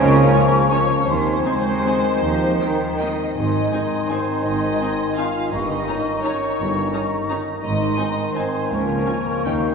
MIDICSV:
0, 0, Header, 1, 12, 480
1, 0, Start_track
1, 0, Key_signature, -4, "major"
1, 0, Tempo, 366077
1, 1404, Time_signature, 3, 2, 24, 8
1, 1404, Tempo, 384123
1, 3804, Tempo, 369231
1, 5244, Tempo, 352734
1, 10524, Tempo, 369004
1, 12822, End_track
2, 0, Start_track
2, 0, Title_t, "Flute section"
2, 0, Program_c, 0, 73
2, 0, Note_on_c, 0, 85, 93
2, 1401, Note_off_c, 0, 85, 0
2, 1422, Note_on_c, 0, 84, 70
2, 2831, Note_off_c, 0, 84, 0
2, 2881, Note_on_c, 0, 82, 55
2, 4066, Note_off_c, 0, 82, 0
2, 4281, Note_on_c, 0, 84, 67
2, 7122, Note_off_c, 0, 84, 0
2, 7183, Note_on_c, 0, 85, 58
2, 9648, Note_off_c, 0, 85, 0
2, 10073, Note_on_c, 0, 84, 61
2, 11451, Note_off_c, 0, 84, 0
2, 11487, Note_on_c, 0, 85, 55
2, 12822, Note_off_c, 0, 85, 0
2, 12822, End_track
3, 0, Start_track
3, 0, Title_t, "Oboe"
3, 0, Program_c, 1, 68
3, 0, Note_on_c, 1, 80, 86
3, 995, Note_off_c, 1, 80, 0
3, 1410, Note_on_c, 1, 80, 64
3, 2850, Note_on_c, 1, 79, 59
3, 2869, Note_off_c, 1, 80, 0
3, 4050, Note_off_c, 1, 79, 0
3, 4281, Note_on_c, 1, 80, 59
3, 7121, Note_off_c, 1, 80, 0
3, 7180, Note_on_c, 1, 82, 59
3, 11027, Note_on_c, 1, 80, 56
3, 11046, Note_off_c, 1, 82, 0
3, 12447, Note_on_c, 1, 79, 46
3, 12466, Note_off_c, 1, 80, 0
3, 12822, Note_off_c, 1, 79, 0
3, 12822, End_track
4, 0, Start_track
4, 0, Title_t, "Violin section"
4, 0, Program_c, 2, 48
4, 442, Note_on_c, 2, 80, 59
4, 547, Note_off_c, 2, 80, 0
4, 929, Note_on_c, 2, 80, 65
4, 1034, Note_off_c, 2, 80, 0
4, 1884, Note_on_c, 2, 80, 48
4, 1984, Note_off_c, 2, 80, 0
4, 2392, Note_on_c, 2, 80, 52
4, 2492, Note_off_c, 2, 80, 0
4, 3325, Note_on_c, 2, 79, 39
4, 3425, Note_off_c, 2, 79, 0
4, 3808, Note_on_c, 2, 79, 42
4, 3912, Note_off_c, 2, 79, 0
4, 4755, Note_on_c, 2, 80, 46
4, 4859, Note_off_c, 2, 80, 0
4, 5252, Note_on_c, 2, 80, 51
4, 5360, Note_off_c, 2, 80, 0
4, 6221, Note_on_c, 2, 80, 42
4, 6330, Note_off_c, 2, 80, 0
4, 6727, Note_on_c, 2, 80, 50
4, 6836, Note_off_c, 2, 80, 0
4, 7669, Note_on_c, 2, 82, 47
4, 7778, Note_off_c, 2, 82, 0
4, 8163, Note_on_c, 2, 82, 56
4, 8272, Note_off_c, 2, 82, 0
4, 9116, Note_on_c, 2, 82, 44
4, 9225, Note_off_c, 2, 82, 0
4, 9602, Note_on_c, 2, 82, 56
4, 9711, Note_off_c, 2, 82, 0
4, 10529, Note_on_c, 2, 80, 52
4, 10633, Note_off_c, 2, 80, 0
4, 11025, Note_on_c, 2, 80, 52
4, 11129, Note_off_c, 2, 80, 0
4, 11944, Note_on_c, 2, 80, 42
4, 12048, Note_off_c, 2, 80, 0
4, 12450, Note_on_c, 2, 79, 45
4, 12554, Note_off_c, 2, 79, 0
4, 12822, End_track
5, 0, Start_track
5, 0, Title_t, "Violin section"
5, 0, Program_c, 3, 48
5, 0, Note_on_c, 3, 70, 108
5, 928, Note_off_c, 3, 70, 0
5, 939, Note_on_c, 3, 73, 91
5, 1401, Note_off_c, 3, 73, 0
5, 1401, Note_on_c, 3, 72, 98
5, 3804, Note_off_c, 3, 72, 0
5, 3816, Note_on_c, 3, 75, 73
5, 4267, Note_off_c, 3, 75, 0
5, 4283, Note_on_c, 3, 75, 81
5, 5225, Note_off_c, 3, 75, 0
5, 5238, Note_on_c, 3, 72, 75
5, 5702, Note_on_c, 3, 75, 90
5, 5724, Note_off_c, 3, 72, 0
5, 6693, Note_off_c, 3, 75, 0
5, 6695, Note_on_c, 3, 77, 76
5, 7172, Note_off_c, 3, 77, 0
5, 7179, Note_on_c, 3, 75, 81
5, 8136, Note_off_c, 3, 75, 0
5, 8149, Note_on_c, 3, 73, 72
5, 9350, Note_off_c, 3, 73, 0
5, 10057, Note_on_c, 3, 75, 96
5, 10962, Note_off_c, 3, 75, 0
5, 11037, Note_on_c, 3, 72, 82
5, 11482, Note_off_c, 3, 72, 0
5, 11493, Note_on_c, 3, 70, 81
5, 12822, Note_off_c, 3, 70, 0
5, 12822, End_track
6, 0, Start_track
6, 0, Title_t, "Clarinet"
6, 0, Program_c, 4, 71
6, 0, Note_on_c, 4, 61, 76
6, 1037, Note_off_c, 4, 61, 0
6, 1401, Note_on_c, 4, 63, 58
6, 3997, Note_off_c, 4, 63, 0
6, 4284, Note_on_c, 4, 63, 57
6, 7123, Note_off_c, 4, 63, 0
6, 7182, Note_on_c, 4, 63, 52
6, 10003, Note_off_c, 4, 63, 0
6, 10059, Note_on_c, 4, 63, 49
6, 11495, Note_on_c, 4, 61, 47
6, 11515, Note_off_c, 4, 63, 0
6, 12456, Note_on_c, 4, 63, 49
6, 12476, Note_off_c, 4, 61, 0
6, 12822, Note_off_c, 4, 63, 0
6, 12822, End_track
7, 0, Start_track
7, 0, Title_t, "Viola section"
7, 0, Program_c, 5, 48
7, 431, Note_on_c, 5, 65, 61
7, 432, Note_on_c, 5, 61, 60
7, 536, Note_off_c, 5, 65, 0
7, 537, Note_off_c, 5, 61, 0
7, 921, Note_on_c, 5, 61, 59
7, 922, Note_on_c, 5, 65, 62
7, 1026, Note_off_c, 5, 61, 0
7, 1027, Note_off_c, 5, 65, 0
7, 1880, Note_on_c, 5, 63, 54
7, 1883, Note_on_c, 5, 60, 53
7, 1979, Note_off_c, 5, 63, 0
7, 1983, Note_off_c, 5, 60, 0
7, 2391, Note_on_c, 5, 63, 45
7, 2393, Note_on_c, 5, 60, 52
7, 2491, Note_off_c, 5, 63, 0
7, 2493, Note_off_c, 5, 60, 0
7, 3317, Note_on_c, 5, 63, 45
7, 3319, Note_on_c, 5, 58, 44
7, 3417, Note_off_c, 5, 63, 0
7, 3419, Note_off_c, 5, 58, 0
7, 3808, Note_on_c, 5, 63, 46
7, 3810, Note_on_c, 5, 58, 44
7, 3912, Note_off_c, 5, 63, 0
7, 3914, Note_off_c, 5, 58, 0
7, 4759, Note_on_c, 5, 63, 51
7, 4765, Note_on_c, 5, 60, 50
7, 4863, Note_off_c, 5, 63, 0
7, 4869, Note_off_c, 5, 60, 0
7, 5250, Note_on_c, 5, 63, 56
7, 5253, Note_on_c, 5, 60, 52
7, 5359, Note_off_c, 5, 63, 0
7, 5362, Note_off_c, 5, 60, 0
7, 6212, Note_on_c, 5, 63, 46
7, 6213, Note_on_c, 5, 60, 47
7, 6321, Note_off_c, 5, 63, 0
7, 6322, Note_off_c, 5, 60, 0
7, 6706, Note_on_c, 5, 63, 52
7, 6707, Note_on_c, 5, 60, 45
7, 6815, Note_off_c, 5, 63, 0
7, 6816, Note_off_c, 5, 60, 0
7, 7659, Note_on_c, 5, 61, 50
7, 7662, Note_on_c, 5, 63, 51
7, 7768, Note_off_c, 5, 61, 0
7, 7771, Note_off_c, 5, 63, 0
7, 8145, Note_on_c, 5, 63, 54
7, 8152, Note_on_c, 5, 61, 53
7, 8254, Note_off_c, 5, 63, 0
7, 8261, Note_off_c, 5, 61, 0
7, 9092, Note_on_c, 5, 61, 50
7, 9097, Note_on_c, 5, 63, 52
7, 9200, Note_off_c, 5, 61, 0
7, 9206, Note_off_c, 5, 63, 0
7, 9590, Note_on_c, 5, 63, 53
7, 9595, Note_on_c, 5, 61, 50
7, 9699, Note_off_c, 5, 63, 0
7, 9704, Note_off_c, 5, 61, 0
7, 10517, Note_on_c, 5, 63, 53
7, 10519, Note_on_c, 5, 60, 48
7, 10621, Note_off_c, 5, 63, 0
7, 10623, Note_off_c, 5, 60, 0
7, 11009, Note_on_c, 5, 63, 53
7, 11014, Note_on_c, 5, 60, 48
7, 11113, Note_off_c, 5, 63, 0
7, 11118, Note_off_c, 5, 60, 0
7, 11923, Note_on_c, 5, 61, 48
7, 11926, Note_on_c, 5, 65, 45
7, 12027, Note_off_c, 5, 61, 0
7, 12030, Note_off_c, 5, 65, 0
7, 12429, Note_on_c, 5, 61, 50
7, 12435, Note_on_c, 5, 63, 46
7, 12534, Note_off_c, 5, 61, 0
7, 12539, Note_off_c, 5, 63, 0
7, 12822, End_track
8, 0, Start_track
8, 0, Title_t, "French horn section"
8, 0, Program_c, 6, 60
8, 0, Note_on_c, 6, 58, 91
8, 907, Note_off_c, 6, 58, 0
8, 920, Note_on_c, 6, 61, 82
8, 1390, Note_on_c, 6, 60, 89
8, 1401, Note_off_c, 6, 61, 0
8, 3750, Note_off_c, 6, 60, 0
8, 3800, Note_on_c, 6, 63, 68
8, 4268, Note_off_c, 6, 63, 0
8, 4284, Note_on_c, 6, 63, 77
8, 5226, Note_off_c, 6, 63, 0
8, 5241, Note_on_c, 6, 60, 68
8, 5713, Note_on_c, 6, 63, 83
8, 5726, Note_off_c, 6, 60, 0
8, 6698, Note_off_c, 6, 63, 0
8, 6703, Note_on_c, 6, 65, 68
8, 7176, Note_off_c, 6, 65, 0
8, 7185, Note_on_c, 6, 63, 70
8, 7934, Note_off_c, 6, 63, 0
8, 8165, Note_on_c, 6, 61, 71
8, 9334, Note_off_c, 6, 61, 0
8, 10056, Note_on_c, 6, 63, 76
8, 10962, Note_off_c, 6, 63, 0
8, 11017, Note_on_c, 6, 60, 64
8, 11472, Note_off_c, 6, 60, 0
8, 11476, Note_on_c, 6, 58, 75
8, 12822, Note_off_c, 6, 58, 0
8, 12822, End_track
9, 0, Start_track
9, 0, Title_t, "Bassoon"
9, 0, Program_c, 7, 70
9, 0, Note_on_c, 7, 53, 87
9, 2001, Note_off_c, 7, 53, 0
9, 2404, Note_on_c, 7, 51, 65
9, 4008, Note_off_c, 7, 51, 0
9, 4294, Note_on_c, 7, 51, 66
9, 7128, Note_off_c, 7, 51, 0
9, 7181, Note_on_c, 7, 51, 61
9, 10003, Note_off_c, 7, 51, 0
9, 10059, Note_on_c, 7, 51, 62
9, 11480, Note_on_c, 7, 53, 58
9, 11500, Note_off_c, 7, 51, 0
9, 12455, Note_on_c, 7, 51, 54
9, 12474, Note_off_c, 7, 53, 0
9, 12822, Note_off_c, 7, 51, 0
9, 12822, End_track
10, 0, Start_track
10, 0, Title_t, "Cello section"
10, 0, Program_c, 8, 48
10, 0, Note_on_c, 8, 49, 96
10, 351, Note_off_c, 8, 49, 0
10, 1409, Note_on_c, 8, 51, 68
10, 1800, Note_off_c, 8, 51, 0
10, 1879, Note_on_c, 8, 56, 70
10, 2800, Note_off_c, 8, 56, 0
10, 2849, Note_on_c, 8, 53, 74
10, 3319, Note_off_c, 8, 53, 0
10, 3319, Note_on_c, 8, 51, 56
10, 4280, Note_on_c, 8, 44, 69
10, 4283, Note_off_c, 8, 51, 0
10, 4673, Note_off_c, 8, 44, 0
10, 5730, Note_on_c, 8, 44, 61
10, 6124, Note_off_c, 8, 44, 0
10, 7183, Note_on_c, 8, 43, 66
10, 7576, Note_off_c, 8, 43, 0
10, 8628, Note_on_c, 8, 43, 64
10, 9024, Note_off_c, 8, 43, 0
10, 10055, Note_on_c, 8, 44, 68
10, 10442, Note_off_c, 8, 44, 0
10, 11464, Note_on_c, 8, 37, 62
10, 11849, Note_off_c, 8, 37, 0
10, 12432, Note_on_c, 8, 39, 61
10, 12822, Note_off_c, 8, 39, 0
10, 12822, End_track
11, 0, Start_track
11, 0, Title_t, "Double bass section"
11, 0, Program_c, 10, 48
11, 0, Note_on_c, 10, 37, 93
11, 356, Note_off_c, 10, 37, 0
11, 1417, Note_on_c, 10, 39, 66
11, 1804, Note_off_c, 10, 39, 0
11, 2865, Note_on_c, 10, 39, 62
11, 3245, Note_off_c, 10, 39, 0
11, 4289, Note_on_c, 10, 32, 66
11, 4678, Note_off_c, 10, 32, 0
11, 5736, Note_on_c, 10, 32, 57
11, 6127, Note_off_c, 10, 32, 0
11, 7190, Note_on_c, 10, 31, 63
11, 7580, Note_off_c, 10, 31, 0
11, 8646, Note_on_c, 10, 31, 59
11, 9033, Note_off_c, 10, 31, 0
11, 10068, Note_on_c, 10, 32, 69
11, 10449, Note_off_c, 10, 32, 0
11, 11482, Note_on_c, 10, 37, 65
11, 11858, Note_off_c, 10, 37, 0
11, 12448, Note_on_c, 10, 39, 50
11, 12822, Note_off_c, 10, 39, 0
11, 12822, End_track
12, 0, Start_track
12, 0, Title_t, "Tuba"
12, 0, Program_c, 11, 58
12, 0, Note_on_c, 11, 37, 91
12, 355, Note_off_c, 11, 37, 0
12, 1419, Note_on_c, 11, 39, 67
12, 1805, Note_off_c, 11, 39, 0
12, 2855, Note_on_c, 11, 39, 63
12, 3240, Note_off_c, 11, 39, 0
12, 4295, Note_on_c, 11, 32, 69
12, 4681, Note_off_c, 11, 32, 0
12, 5743, Note_on_c, 11, 32, 65
12, 6131, Note_off_c, 11, 32, 0
12, 7172, Note_on_c, 11, 31, 60
12, 7571, Note_off_c, 11, 31, 0
12, 8625, Note_on_c, 11, 31, 63
12, 9022, Note_off_c, 11, 31, 0
12, 10064, Note_on_c, 11, 32, 61
12, 10447, Note_off_c, 11, 32, 0
12, 11477, Note_on_c, 11, 37, 65
12, 11856, Note_off_c, 11, 37, 0
12, 12437, Note_on_c, 11, 39, 54
12, 12822, Note_off_c, 11, 39, 0
12, 12822, End_track
0, 0, End_of_file